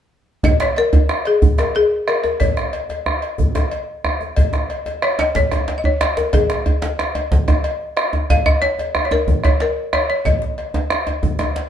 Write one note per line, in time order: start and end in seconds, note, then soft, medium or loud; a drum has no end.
0.43 0.61 D#5 medium
0.43 bombo low loud
0.43 cowbell medium
0.43 djembe slap soft
0.43 djembe bass medium
0.43 djembe bass loud
0.60 0.78 C#5 medium
0.60 bombo rim medium
0.60 djembe slap medium
0.76 1.08 A#4 medium
0.76 bombo rim soft
0.76 cowbell soft
0.76 djembe slap soft
0.93 cowbell soft
0.93 djembe tone medium
0.93 djembe bass loud
1.09 bombo rim medium
1.09 djembe slap medium
1.25 1.60 G#4 medium
1.25 bombo rim soft
1.25 cowbell soft
1.42 bombo low medium
1.42 djembe slap soft
1.42 djembe bass medium
1.58 1.76 A#4 medium
1.58 bombo rim medium
1.58 cowbell soft
1.58 djembe slap medium
1.58 djembe tone medium
1.75 2.09 G#4 medium
1.75 cowbell soft
2.08 2.22 A#4 medium
2.08 bombo rim medium
2.08 cowbell soft
2.24 2.41 A#4 medium
2.24 bombo rim soft
2.24 djembe slap soft
2.24 djembe tone medium
2.40 3.34 C#5 medium
2.40 bombo low medium
2.40 cowbell medium
2.40 djembe slap soft
2.40 djembe bass medium
2.57 bombo rim medium
2.57 djembe slap medium
2.73 bombo rim soft
2.73 cowbell soft
2.73 djembe slap soft
2.89 cowbell soft
2.89 djembe tone medium
3.06 bombo rim medium
3.06 djembe tone medium
3.22 bombo rim soft
3.22 cowbell soft
3.38 bombo low medium
3.38 djembe slap soft
3.38 djembe bass medium
3.55 bombo rim medium
3.55 cowbell soft
3.55 djembe slap medium
3.55 djembe tone medium
3.71 cowbell soft
4.04 bombo rim medium
4.04 djembe tone medium
4.21 bombo rim soft
4.21 djembe slap soft
4.21 djembe tone soft
4.37 bombo low medium
4.37 cowbell medium
4.37 djembe slap soft
4.37 djembe bass medium
4.53 bombo rim medium
4.53 djembe slap soft
4.53 djembe tone medium
4.70 bombo rim soft
4.70 cowbell soft
4.70 djembe slap soft
4.86 cowbell soft
4.86 djembe tone medium
5.02 5.20 C#5 medium
5.02 bombo rim medium
5.19 5.35 D#5 medium
5.19 bombo rim soft
5.19 cowbell soft
5.19 djembe slap loud
5.35 5.79 C#5 medium
5.35 bombo low medium
5.35 djembe slap medium
5.35 djembe slap soft
5.35 djembe bass medium
5.51 bombo rim medium
5.51 cowbell soft
5.51 djembe slap medium
5.51 djembe tone soft
5.51 djembe tone medium
5.68 cowbell soft
5.68 djembe slap medium
5.78 5.85 D#5 medium
5.84 6.18 C#5 medium
5.84 djembe bass medium
6.01 bombo rim medium
6.01 cowbell medium
6.01 djembe slap loud
6.17 6.24 A#4 medium
6.17 bombo rim soft
6.17 djembe slap medium
6.17 djembe slap soft
6.17 djembe tone medium
6.33 6.95 G#4 medium
6.33 bombo rim soft
6.33 bombo low medium
6.33 cowbell medium
6.33 djembe tone medium
6.33 djembe bass medium
6.50 bombo rim medium
6.50 djembe slap medium
6.50 djembe slap soft
6.66 cowbell soft
6.66 djembe bass medium
6.82 cowbell soft
6.82 djembe slap medium
6.82 djembe slap soft
6.82 djembe tone medium
6.99 bombo rim medium
6.99 djembe slap medium
7.15 bombo rim soft
7.15 cowbell medium
7.15 djembe tone medium
7.32 bombo low medium
7.32 djembe slap medium
7.32 djembe bass medium
7.48 bombo rim medium
7.48 cowbell soft
7.48 djembe slap soft
7.48 djembe tone soft
7.48 djembe bass medium
7.64 bombo rim soft
7.64 cowbell medium
7.64 djembe slap soft
7.81 djembe slap soft
7.97 bombo rim medium
7.97 cowbell soft
8.13 djembe tone medium
8.13 djembe tone soft
8.30 8.45 F5 medium
8.30 bombo low medium
8.30 cowbell medium
8.30 djembe slap soft
8.30 djembe tone medium
8.30 djembe bass medium
8.46 8.63 D#5 medium
8.46 bombo rim medium
8.46 djembe slap soft
8.46 djembe bass medium
8.62 8.92 C#5 medium
8.62 bombo rim soft
8.62 djembe slap medium
8.62 djembe slap soft
8.79 cowbell soft
8.79 djembe tone soft
8.95 bombo rim medium
8.95 djembe tone medium
9.05 9.12 C#5 medium
9.11 9.42 A#4 medium
9.11 bombo rim soft
9.11 cowbell soft
9.11 djembe tone loud
9.27 bombo low medium
9.27 djembe slap soft
9.27 djembe tone medium
9.27 djembe bass medium
9.44 9.60 C#5 medium
9.44 bombo rim medium
9.44 cowbell soft
9.44 djembe slap soft
9.44 djembe tone soft
9.44 djembe bass medium
9.60 9.95 A#4 medium
9.60 cowbell soft
9.60 djembe slap medium
9.93 10.08 C#5 medium
9.93 bombo rim medium
9.93 cowbell soft
9.93 djembe tone medium
10.10 10.26 C#5 medium
10.10 bombo rim soft
10.10 djembe slap soft
10.25 11.19 D#5 medium
10.25 bombo low medium
10.25 cowbell soft
10.25 djembe slap soft
10.25 djembe bass medium
10.42 djembe slap soft
10.58 bombo rim soft
10.58 cowbell soft
10.58 djembe slap soft
10.74 cowbell soft
10.74 djembe tone medium
10.74 djembe tone loud
10.90 bombo rim medium
10.90 djembe slap medium
11.07 cowbell soft
11.07 djembe tone medium
11.23 bombo low medium
11.23 djembe slap soft
11.23 djembe tone medium
11.23 djembe bass medium
11.39 bombo rim medium
11.39 cowbell soft
11.39 djembe slap medium
11.39 djembe tone medium
11.56 cowbell soft
11.56 djembe slap medium